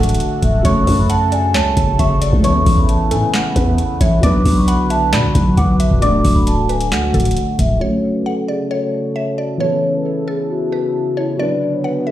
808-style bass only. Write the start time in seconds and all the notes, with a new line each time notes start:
Already playing: D1
0.42 D1
0.65 F#1
0.87 F#2
1.54 C#2
1.77 F#1
1.99 F#1
2.33 C#2
2.55 E2
2.66 A1
3.11 A2
3.56 E2
4.01 A1
4.23 B1
4.45 B1
5.13 B2
5.24 B1
5.35 B1
5.57 B1
5.91 D1
6.25 D1
6.92 D2
7.14 D1
7.59 D1